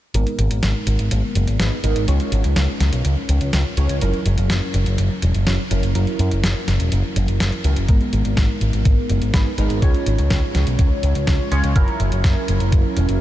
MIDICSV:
0, 0, Header, 1, 4, 480
1, 0, Start_track
1, 0, Key_signature, 5, "minor"
1, 0, Tempo, 483871
1, 145, Time_signature, 4, 2, 24, 8
1, 13102, End_track
2, 0, Start_track
2, 0, Title_t, "Analog polysynth"
2, 0, Program_c, 0, 90
2, 143, Note_on_c, 0, 59, 78
2, 143, Note_on_c, 0, 63, 77
2, 143, Note_on_c, 0, 70, 91
2, 144, Note_on_c, 0, 56, 84
2, 1555, Note_off_c, 0, 56, 0
2, 1555, Note_off_c, 0, 59, 0
2, 1555, Note_off_c, 0, 63, 0
2, 1555, Note_off_c, 0, 70, 0
2, 1583, Note_on_c, 0, 56, 79
2, 1584, Note_on_c, 0, 59, 72
2, 1584, Note_on_c, 0, 63, 71
2, 1584, Note_on_c, 0, 71, 86
2, 1740, Note_off_c, 0, 56, 0
2, 1740, Note_off_c, 0, 59, 0
2, 1740, Note_off_c, 0, 63, 0
2, 1740, Note_off_c, 0, 71, 0
2, 1823, Note_on_c, 0, 56, 90
2, 1823, Note_on_c, 0, 59, 86
2, 1823, Note_on_c, 0, 63, 85
2, 1823, Note_on_c, 0, 70, 101
2, 2035, Note_off_c, 0, 56, 0
2, 2035, Note_off_c, 0, 59, 0
2, 2035, Note_off_c, 0, 63, 0
2, 2035, Note_off_c, 0, 70, 0
2, 2064, Note_on_c, 0, 56, 84
2, 2064, Note_on_c, 0, 61, 77
2, 2064, Note_on_c, 0, 73, 91
2, 2065, Note_on_c, 0, 65, 74
2, 3715, Note_off_c, 0, 56, 0
2, 3715, Note_off_c, 0, 61, 0
2, 3715, Note_off_c, 0, 73, 0
2, 3716, Note_off_c, 0, 65, 0
2, 3745, Note_on_c, 0, 61, 82
2, 3745, Note_on_c, 0, 65, 78
2, 3745, Note_on_c, 0, 73, 95
2, 3746, Note_on_c, 0, 56, 87
2, 3956, Note_off_c, 0, 56, 0
2, 3956, Note_off_c, 0, 61, 0
2, 3956, Note_off_c, 0, 65, 0
2, 3956, Note_off_c, 0, 73, 0
2, 3985, Note_on_c, 0, 54, 84
2, 3985, Note_on_c, 0, 61, 76
2, 3985, Note_on_c, 0, 64, 76
2, 3985, Note_on_c, 0, 70, 93
2, 5396, Note_off_c, 0, 54, 0
2, 5396, Note_off_c, 0, 61, 0
2, 5396, Note_off_c, 0, 64, 0
2, 5396, Note_off_c, 0, 70, 0
2, 5424, Note_on_c, 0, 54, 78
2, 5424, Note_on_c, 0, 61, 71
2, 5424, Note_on_c, 0, 64, 71
2, 5424, Note_on_c, 0, 73, 86
2, 5580, Note_off_c, 0, 54, 0
2, 5580, Note_off_c, 0, 61, 0
2, 5580, Note_off_c, 0, 64, 0
2, 5580, Note_off_c, 0, 73, 0
2, 5666, Note_on_c, 0, 54, 92
2, 5666, Note_on_c, 0, 61, 82
2, 5666, Note_on_c, 0, 64, 85
2, 5666, Note_on_c, 0, 70, 102
2, 5876, Note_off_c, 0, 54, 0
2, 5876, Note_off_c, 0, 64, 0
2, 5876, Note_off_c, 0, 70, 0
2, 5877, Note_off_c, 0, 61, 0
2, 5905, Note_on_c, 0, 54, 81
2, 5905, Note_on_c, 0, 61, 76
2, 5905, Note_on_c, 0, 64, 75
2, 5905, Note_on_c, 0, 70, 91
2, 7556, Note_off_c, 0, 54, 0
2, 7556, Note_off_c, 0, 61, 0
2, 7556, Note_off_c, 0, 64, 0
2, 7556, Note_off_c, 0, 70, 0
2, 7585, Note_on_c, 0, 54, 87
2, 7585, Note_on_c, 0, 61, 83
2, 7585, Note_on_c, 0, 64, 83
2, 7585, Note_on_c, 0, 70, 96
2, 7796, Note_off_c, 0, 54, 0
2, 7796, Note_off_c, 0, 61, 0
2, 7796, Note_off_c, 0, 64, 0
2, 7796, Note_off_c, 0, 70, 0
2, 7825, Note_on_c, 0, 70, 92
2, 7826, Note_on_c, 0, 56, 82
2, 7826, Note_on_c, 0, 59, 76
2, 7826, Note_on_c, 0, 63, 77
2, 9236, Note_off_c, 0, 56, 0
2, 9236, Note_off_c, 0, 59, 0
2, 9236, Note_off_c, 0, 63, 0
2, 9236, Note_off_c, 0, 70, 0
2, 9265, Note_on_c, 0, 59, 72
2, 9265, Note_on_c, 0, 71, 88
2, 9266, Note_on_c, 0, 56, 78
2, 9266, Note_on_c, 0, 63, 72
2, 9421, Note_off_c, 0, 56, 0
2, 9421, Note_off_c, 0, 59, 0
2, 9421, Note_off_c, 0, 63, 0
2, 9421, Note_off_c, 0, 71, 0
2, 9506, Note_on_c, 0, 56, 94
2, 9506, Note_on_c, 0, 59, 83
2, 9506, Note_on_c, 0, 63, 85
2, 9506, Note_on_c, 0, 70, 100
2, 9716, Note_off_c, 0, 56, 0
2, 9716, Note_off_c, 0, 59, 0
2, 9716, Note_off_c, 0, 70, 0
2, 9717, Note_off_c, 0, 63, 0
2, 9745, Note_on_c, 0, 61, 73
2, 9745, Note_on_c, 0, 65, 72
2, 9745, Note_on_c, 0, 73, 91
2, 9746, Note_on_c, 0, 56, 82
2, 11396, Note_off_c, 0, 56, 0
2, 11396, Note_off_c, 0, 61, 0
2, 11396, Note_off_c, 0, 65, 0
2, 11396, Note_off_c, 0, 73, 0
2, 11424, Note_on_c, 0, 56, 88
2, 11424, Note_on_c, 0, 61, 82
2, 11424, Note_on_c, 0, 65, 80
2, 11424, Note_on_c, 0, 73, 98
2, 11635, Note_off_c, 0, 56, 0
2, 11635, Note_off_c, 0, 73, 0
2, 11636, Note_off_c, 0, 61, 0
2, 11636, Note_off_c, 0, 65, 0
2, 11665, Note_on_c, 0, 54, 85
2, 11665, Note_on_c, 0, 61, 78
2, 11665, Note_on_c, 0, 64, 76
2, 11665, Note_on_c, 0, 70, 92
2, 13076, Note_off_c, 0, 54, 0
2, 13076, Note_off_c, 0, 61, 0
2, 13076, Note_off_c, 0, 64, 0
2, 13076, Note_off_c, 0, 70, 0
2, 13102, End_track
3, 0, Start_track
3, 0, Title_t, "Picked electric bass"
3, 0, Program_c, 1, 34
3, 144, Note_on_c, 1, 32, 90
3, 239, Note_off_c, 1, 32, 0
3, 384, Note_on_c, 1, 32, 88
3, 479, Note_off_c, 1, 32, 0
3, 504, Note_on_c, 1, 32, 73
3, 599, Note_off_c, 1, 32, 0
3, 624, Note_on_c, 1, 32, 92
3, 719, Note_off_c, 1, 32, 0
3, 863, Note_on_c, 1, 32, 84
3, 959, Note_off_c, 1, 32, 0
3, 983, Note_on_c, 1, 32, 75
3, 1079, Note_off_c, 1, 32, 0
3, 1104, Note_on_c, 1, 32, 91
3, 1200, Note_off_c, 1, 32, 0
3, 1343, Note_on_c, 1, 30, 89
3, 1439, Note_off_c, 1, 30, 0
3, 1462, Note_on_c, 1, 32, 73
3, 1558, Note_off_c, 1, 32, 0
3, 1582, Note_on_c, 1, 32, 95
3, 1679, Note_off_c, 1, 32, 0
3, 1824, Note_on_c, 1, 32, 93
3, 1919, Note_off_c, 1, 32, 0
3, 1944, Note_on_c, 1, 32, 75
3, 2039, Note_off_c, 1, 32, 0
3, 2062, Note_on_c, 1, 37, 94
3, 2158, Note_off_c, 1, 37, 0
3, 2302, Note_on_c, 1, 32, 90
3, 2399, Note_off_c, 1, 32, 0
3, 2423, Note_on_c, 1, 37, 76
3, 2519, Note_off_c, 1, 37, 0
3, 2543, Note_on_c, 1, 37, 93
3, 2639, Note_off_c, 1, 37, 0
3, 2783, Note_on_c, 1, 37, 86
3, 2879, Note_off_c, 1, 37, 0
3, 2902, Note_on_c, 1, 35, 75
3, 2999, Note_off_c, 1, 35, 0
3, 3023, Note_on_c, 1, 37, 92
3, 3119, Note_off_c, 1, 37, 0
3, 3264, Note_on_c, 1, 37, 87
3, 3360, Note_off_c, 1, 37, 0
3, 3385, Note_on_c, 1, 37, 76
3, 3480, Note_off_c, 1, 37, 0
3, 3505, Note_on_c, 1, 37, 94
3, 3600, Note_off_c, 1, 37, 0
3, 3744, Note_on_c, 1, 37, 89
3, 3840, Note_off_c, 1, 37, 0
3, 3863, Note_on_c, 1, 37, 73
3, 3959, Note_off_c, 1, 37, 0
3, 3984, Note_on_c, 1, 30, 93
3, 4080, Note_off_c, 1, 30, 0
3, 4224, Note_on_c, 1, 30, 88
3, 4320, Note_off_c, 1, 30, 0
3, 4345, Note_on_c, 1, 30, 79
3, 4440, Note_off_c, 1, 30, 0
3, 4464, Note_on_c, 1, 30, 97
3, 4559, Note_off_c, 1, 30, 0
3, 4704, Note_on_c, 1, 30, 85
3, 4799, Note_off_c, 1, 30, 0
3, 4824, Note_on_c, 1, 30, 76
3, 4920, Note_off_c, 1, 30, 0
3, 4945, Note_on_c, 1, 30, 93
3, 5040, Note_off_c, 1, 30, 0
3, 5186, Note_on_c, 1, 28, 88
3, 5280, Note_off_c, 1, 28, 0
3, 5305, Note_on_c, 1, 30, 73
3, 5400, Note_off_c, 1, 30, 0
3, 5427, Note_on_c, 1, 30, 96
3, 5521, Note_off_c, 1, 30, 0
3, 5666, Note_on_c, 1, 30, 90
3, 5760, Note_off_c, 1, 30, 0
3, 5785, Note_on_c, 1, 30, 75
3, 5880, Note_off_c, 1, 30, 0
3, 5905, Note_on_c, 1, 30, 93
3, 6000, Note_off_c, 1, 30, 0
3, 6145, Note_on_c, 1, 42, 90
3, 6240, Note_off_c, 1, 42, 0
3, 6265, Note_on_c, 1, 30, 77
3, 6360, Note_off_c, 1, 30, 0
3, 6385, Note_on_c, 1, 30, 98
3, 6480, Note_off_c, 1, 30, 0
3, 6625, Note_on_c, 1, 30, 84
3, 6720, Note_off_c, 1, 30, 0
3, 6745, Note_on_c, 1, 28, 77
3, 6840, Note_off_c, 1, 28, 0
3, 6866, Note_on_c, 1, 30, 96
3, 6960, Note_off_c, 1, 30, 0
3, 7105, Note_on_c, 1, 30, 88
3, 7200, Note_off_c, 1, 30, 0
3, 7224, Note_on_c, 1, 30, 76
3, 7319, Note_off_c, 1, 30, 0
3, 7345, Note_on_c, 1, 30, 96
3, 7440, Note_off_c, 1, 30, 0
3, 7585, Note_on_c, 1, 37, 90
3, 7680, Note_off_c, 1, 37, 0
3, 7705, Note_on_c, 1, 30, 75
3, 7800, Note_off_c, 1, 30, 0
3, 7824, Note_on_c, 1, 32, 94
3, 7920, Note_off_c, 1, 32, 0
3, 8064, Note_on_c, 1, 32, 89
3, 8160, Note_off_c, 1, 32, 0
3, 8183, Note_on_c, 1, 32, 77
3, 8279, Note_off_c, 1, 32, 0
3, 8304, Note_on_c, 1, 32, 96
3, 8400, Note_off_c, 1, 32, 0
3, 8544, Note_on_c, 1, 32, 87
3, 8639, Note_off_c, 1, 32, 0
3, 8663, Note_on_c, 1, 32, 74
3, 8759, Note_off_c, 1, 32, 0
3, 8784, Note_on_c, 1, 32, 93
3, 8880, Note_off_c, 1, 32, 0
3, 9025, Note_on_c, 1, 30, 86
3, 9120, Note_off_c, 1, 30, 0
3, 9144, Note_on_c, 1, 32, 78
3, 9240, Note_off_c, 1, 32, 0
3, 9265, Note_on_c, 1, 32, 97
3, 9360, Note_off_c, 1, 32, 0
3, 9504, Note_on_c, 1, 32, 90
3, 9600, Note_off_c, 1, 32, 0
3, 9624, Note_on_c, 1, 32, 77
3, 9719, Note_off_c, 1, 32, 0
3, 9744, Note_on_c, 1, 37, 96
3, 9840, Note_off_c, 1, 37, 0
3, 9985, Note_on_c, 1, 32, 90
3, 10080, Note_off_c, 1, 32, 0
3, 10105, Note_on_c, 1, 37, 79
3, 10200, Note_off_c, 1, 37, 0
3, 10224, Note_on_c, 1, 37, 97
3, 10320, Note_off_c, 1, 37, 0
3, 10466, Note_on_c, 1, 37, 88
3, 10561, Note_off_c, 1, 37, 0
3, 10586, Note_on_c, 1, 35, 78
3, 10681, Note_off_c, 1, 35, 0
3, 10705, Note_on_c, 1, 37, 93
3, 10800, Note_off_c, 1, 37, 0
3, 10945, Note_on_c, 1, 37, 89
3, 11040, Note_off_c, 1, 37, 0
3, 11064, Note_on_c, 1, 37, 75
3, 11160, Note_off_c, 1, 37, 0
3, 11184, Note_on_c, 1, 37, 98
3, 11280, Note_off_c, 1, 37, 0
3, 11425, Note_on_c, 1, 37, 92
3, 11520, Note_off_c, 1, 37, 0
3, 11546, Note_on_c, 1, 37, 77
3, 11640, Note_off_c, 1, 37, 0
3, 11665, Note_on_c, 1, 30, 98
3, 11760, Note_off_c, 1, 30, 0
3, 11904, Note_on_c, 1, 30, 90
3, 11999, Note_off_c, 1, 30, 0
3, 12025, Note_on_c, 1, 30, 80
3, 12120, Note_off_c, 1, 30, 0
3, 12144, Note_on_c, 1, 30, 97
3, 12239, Note_off_c, 1, 30, 0
3, 12385, Note_on_c, 1, 30, 86
3, 12480, Note_off_c, 1, 30, 0
3, 12505, Note_on_c, 1, 30, 79
3, 12600, Note_off_c, 1, 30, 0
3, 12624, Note_on_c, 1, 30, 97
3, 12720, Note_off_c, 1, 30, 0
3, 12866, Note_on_c, 1, 28, 92
3, 12960, Note_off_c, 1, 28, 0
3, 12986, Note_on_c, 1, 30, 76
3, 13080, Note_off_c, 1, 30, 0
3, 13102, End_track
4, 0, Start_track
4, 0, Title_t, "Drums"
4, 143, Note_on_c, 9, 42, 80
4, 242, Note_off_c, 9, 42, 0
4, 265, Note_on_c, 9, 42, 35
4, 364, Note_off_c, 9, 42, 0
4, 384, Note_on_c, 9, 42, 75
4, 483, Note_off_c, 9, 42, 0
4, 503, Note_on_c, 9, 42, 51
4, 603, Note_off_c, 9, 42, 0
4, 622, Note_on_c, 9, 38, 109
4, 622, Note_on_c, 9, 42, 76
4, 721, Note_off_c, 9, 38, 0
4, 721, Note_off_c, 9, 42, 0
4, 861, Note_on_c, 9, 42, 78
4, 961, Note_off_c, 9, 42, 0
4, 982, Note_on_c, 9, 42, 52
4, 1081, Note_off_c, 9, 42, 0
4, 1103, Note_on_c, 9, 42, 80
4, 1202, Note_off_c, 9, 42, 0
4, 1343, Note_on_c, 9, 42, 77
4, 1443, Note_off_c, 9, 42, 0
4, 1463, Note_on_c, 9, 42, 51
4, 1562, Note_off_c, 9, 42, 0
4, 1583, Note_on_c, 9, 38, 112
4, 1583, Note_on_c, 9, 42, 75
4, 1682, Note_off_c, 9, 38, 0
4, 1682, Note_off_c, 9, 42, 0
4, 1823, Note_on_c, 9, 42, 78
4, 1922, Note_off_c, 9, 42, 0
4, 1943, Note_on_c, 9, 42, 51
4, 2043, Note_off_c, 9, 42, 0
4, 2063, Note_on_c, 9, 42, 77
4, 2162, Note_off_c, 9, 42, 0
4, 2182, Note_on_c, 9, 42, 35
4, 2281, Note_off_c, 9, 42, 0
4, 2302, Note_on_c, 9, 42, 75
4, 2401, Note_off_c, 9, 42, 0
4, 2422, Note_on_c, 9, 42, 50
4, 2521, Note_off_c, 9, 42, 0
4, 2541, Note_on_c, 9, 38, 113
4, 2541, Note_on_c, 9, 42, 76
4, 2641, Note_off_c, 9, 38, 0
4, 2641, Note_off_c, 9, 42, 0
4, 2782, Note_on_c, 9, 38, 59
4, 2782, Note_on_c, 9, 42, 77
4, 2881, Note_off_c, 9, 38, 0
4, 2881, Note_off_c, 9, 42, 0
4, 2903, Note_on_c, 9, 42, 49
4, 3002, Note_off_c, 9, 42, 0
4, 3023, Note_on_c, 9, 42, 77
4, 3122, Note_off_c, 9, 42, 0
4, 3263, Note_on_c, 9, 42, 74
4, 3362, Note_off_c, 9, 42, 0
4, 3382, Note_on_c, 9, 42, 50
4, 3481, Note_off_c, 9, 42, 0
4, 3502, Note_on_c, 9, 38, 111
4, 3502, Note_on_c, 9, 42, 75
4, 3602, Note_off_c, 9, 38, 0
4, 3602, Note_off_c, 9, 42, 0
4, 3742, Note_on_c, 9, 42, 73
4, 3841, Note_off_c, 9, 42, 0
4, 3863, Note_on_c, 9, 42, 50
4, 3962, Note_off_c, 9, 42, 0
4, 3983, Note_on_c, 9, 42, 75
4, 4082, Note_off_c, 9, 42, 0
4, 4103, Note_on_c, 9, 42, 34
4, 4202, Note_off_c, 9, 42, 0
4, 4222, Note_on_c, 9, 42, 72
4, 4321, Note_off_c, 9, 42, 0
4, 4342, Note_on_c, 9, 42, 48
4, 4441, Note_off_c, 9, 42, 0
4, 4462, Note_on_c, 9, 38, 116
4, 4462, Note_on_c, 9, 42, 71
4, 4561, Note_off_c, 9, 38, 0
4, 4561, Note_off_c, 9, 42, 0
4, 4702, Note_on_c, 9, 42, 74
4, 4802, Note_off_c, 9, 42, 0
4, 4823, Note_on_c, 9, 42, 47
4, 4922, Note_off_c, 9, 42, 0
4, 4943, Note_on_c, 9, 42, 75
4, 5042, Note_off_c, 9, 42, 0
4, 5182, Note_on_c, 9, 42, 72
4, 5281, Note_off_c, 9, 42, 0
4, 5302, Note_on_c, 9, 42, 47
4, 5402, Note_off_c, 9, 42, 0
4, 5423, Note_on_c, 9, 38, 119
4, 5423, Note_on_c, 9, 42, 72
4, 5522, Note_off_c, 9, 38, 0
4, 5522, Note_off_c, 9, 42, 0
4, 5664, Note_on_c, 9, 42, 73
4, 5763, Note_off_c, 9, 42, 0
4, 5785, Note_on_c, 9, 42, 48
4, 5884, Note_off_c, 9, 42, 0
4, 5904, Note_on_c, 9, 42, 73
4, 6003, Note_off_c, 9, 42, 0
4, 6024, Note_on_c, 9, 42, 34
4, 6123, Note_off_c, 9, 42, 0
4, 6144, Note_on_c, 9, 42, 71
4, 6243, Note_off_c, 9, 42, 0
4, 6264, Note_on_c, 9, 42, 49
4, 6363, Note_off_c, 9, 42, 0
4, 6384, Note_on_c, 9, 38, 115
4, 6384, Note_on_c, 9, 42, 70
4, 6483, Note_off_c, 9, 38, 0
4, 6483, Note_off_c, 9, 42, 0
4, 6625, Note_on_c, 9, 38, 59
4, 6625, Note_on_c, 9, 42, 72
4, 6724, Note_off_c, 9, 38, 0
4, 6724, Note_off_c, 9, 42, 0
4, 6744, Note_on_c, 9, 42, 46
4, 6844, Note_off_c, 9, 42, 0
4, 6863, Note_on_c, 9, 42, 72
4, 6962, Note_off_c, 9, 42, 0
4, 7104, Note_on_c, 9, 42, 71
4, 7204, Note_off_c, 9, 42, 0
4, 7223, Note_on_c, 9, 42, 47
4, 7323, Note_off_c, 9, 42, 0
4, 7343, Note_on_c, 9, 38, 116
4, 7343, Note_on_c, 9, 42, 70
4, 7443, Note_off_c, 9, 38, 0
4, 7443, Note_off_c, 9, 42, 0
4, 7463, Note_on_c, 9, 42, 35
4, 7562, Note_off_c, 9, 42, 0
4, 7582, Note_on_c, 9, 42, 70
4, 7682, Note_off_c, 9, 42, 0
4, 7702, Note_on_c, 9, 42, 49
4, 7802, Note_off_c, 9, 42, 0
4, 7822, Note_on_c, 9, 42, 74
4, 7824, Note_on_c, 9, 36, 112
4, 7921, Note_off_c, 9, 42, 0
4, 7924, Note_off_c, 9, 36, 0
4, 7943, Note_on_c, 9, 42, 33
4, 8042, Note_off_c, 9, 42, 0
4, 8063, Note_on_c, 9, 42, 72
4, 8162, Note_off_c, 9, 42, 0
4, 8184, Note_on_c, 9, 42, 47
4, 8283, Note_off_c, 9, 42, 0
4, 8303, Note_on_c, 9, 38, 115
4, 8303, Note_on_c, 9, 42, 70
4, 8304, Note_on_c, 9, 36, 97
4, 8403, Note_off_c, 9, 36, 0
4, 8403, Note_off_c, 9, 38, 0
4, 8403, Note_off_c, 9, 42, 0
4, 8543, Note_on_c, 9, 42, 72
4, 8643, Note_off_c, 9, 42, 0
4, 8662, Note_on_c, 9, 42, 48
4, 8761, Note_off_c, 9, 42, 0
4, 8783, Note_on_c, 9, 42, 73
4, 8784, Note_on_c, 9, 36, 120
4, 8882, Note_off_c, 9, 42, 0
4, 8883, Note_off_c, 9, 36, 0
4, 9022, Note_on_c, 9, 42, 70
4, 9121, Note_off_c, 9, 42, 0
4, 9143, Note_on_c, 9, 42, 47
4, 9242, Note_off_c, 9, 42, 0
4, 9262, Note_on_c, 9, 38, 114
4, 9262, Note_on_c, 9, 42, 72
4, 9264, Note_on_c, 9, 36, 98
4, 9361, Note_off_c, 9, 38, 0
4, 9361, Note_off_c, 9, 42, 0
4, 9364, Note_off_c, 9, 36, 0
4, 9503, Note_on_c, 9, 42, 70
4, 9603, Note_off_c, 9, 42, 0
4, 9623, Note_on_c, 9, 42, 50
4, 9722, Note_off_c, 9, 42, 0
4, 9744, Note_on_c, 9, 36, 112
4, 9744, Note_on_c, 9, 42, 76
4, 9844, Note_off_c, 9, 36, 0
4, 9844, Note_off_c, 9, 42, 0
4, 9865, Note_on_c, 9, 42, 35
4, 9964, Note_off_c, 9, 42, 0
4, 9984, Note_on_c, 9, 42, 73
4, 10083, Note_off_c, 9, 42, 0
4, 10103, Note_on_c, 9, 42, 48
4, 10202, Note_off_c, 9, 42, 0
4, 10222, Note_on_c, 9, 38, 108
4, 10222, Note_on_c, 9, 42, 74
4, 10225, Note_on_c, 9, 36, 96
4, 10322, Note_off_c, 9, 38, 0
4, 10322, Note_off_c, 9, 42, 0
4, 10324, Note_off_c, 9, 36, 0
4, 10463, Note_on_c, 9, 38, 57
4, 10463, Note_on_c, 9, 42, 76
4, 10563, Note_off_c, 9, 38, 0
4, 10563, Note_off_c, 9, 42, 0
4, 10583, Note_on_c, 9, 42, 50
4, 10682, Note_off_c, 9, 42, 0
4, 10702, Note_on_c, 9, 42, 78
4, 10705, Note_on_c, 9, 36, 114
4, 10801, Note_off_c, 9, 42, 0
4, 10804, Note_off_c, 9, 36, 0
4, 10943, Note_on_c, 9, 42, 77
4, 11042, Note_off_c, 9, 42, 0
4, 11064, Note_on_c, 9, 42, 50
4, 11163, Note_off_c, 9, 42, 0
4, 11183, Note_on_c, 9, 38, 107
4, 11183, Note_on_c, 9, 42, 74
4, 11185, Note_on_c, 9, 36, 99
4, 11282, Note_off_c, 9, 38, 0
4, 11282, Note_off_c, 9, 42, 0
4, 11284, Note_off_c, 9, 36, 0
4, 11424, Note_on_c, 9, 42, 75
4, 11523, Note_off_c, 9, 42, 0
4, 11544, Note_on_c, 9, 42, 51
4, 11643, Note_off_c, 9, 42, 0
4, 11663, Note_on_c, 9, 42, 79
4, 11664, Note_on_c, 9, 36, 108
4, 11762, Note_off_c, 9, 42, 0
4, 11763, Note_off_c, 9, 36, 0
4, 11783, Note_on_c, 9, 42, 36
4, 11882, Note_off_c, 9, 42, 0
4, 11903, Note_on_c, 9, 42, 74
4, 12002, Note_off_c, 9, 42, 0
4, 12023, Note_on_c, 9, 42, 51
4, 12122, Note_off_c, 9, 42, 0
4, 12143, Note_on_c, 9, 38, 107
4, 12143, Note_on_c, 9, 42, 78
4, 12144, Note_on_c, 9, 36, 97
4, 12242, Note_off_c, 9, 38, 0
4, 12242, Note_off_c, 9, 42, 0
4, 12243, Note_off_c, 9, 36, 0
4, 12383, Note_on_c, 9, 42, 78
4, 12482, Note_off_c, 9, 42, 0
4, 12502, Note_on_c, 9, 42, 52
4, 12602, Note_off_c, 9, 42, 0
4, 12622, Note_on_c, 9, 42, 82
4, 12624, Note_on_c, 9, 36, 113
4, 12722, Note_off_c, 9, 42, 0
4, 12723, Note_off_c, 9, 36, 0
4, 12862, Note_on_c, 9, 42, 79
4, 12961, Note_off_c, 9, 42, 0
4, 12982, Note_on_c, 9, 42, 52
4, 13081, Note_off_c, 9, 42, 0
4, 13102, End_track
0, 0, End_of_file